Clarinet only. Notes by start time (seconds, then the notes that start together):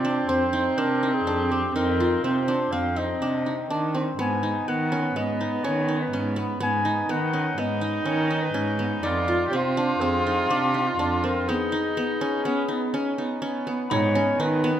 Already playing: D5
0.29 C5
0.78 A#4
1.14 G#4
1.51 G4
1.75 A#4
2.24 C5
2.72 F5
2.97 D#5
4.20 G#5
4.68 F#5
5.16 D#5
5.64 C#5
6.01 B4
6.63 G#5
7.10 F#5
7.59 D#5
8.06 C#5
8.42 B4
9.03 D5
9.52 C5
10.00 G#4
10.50 G4
10.87 F4
11.24 A#4
11.49 G#4
13.92 C#5
14.40 B4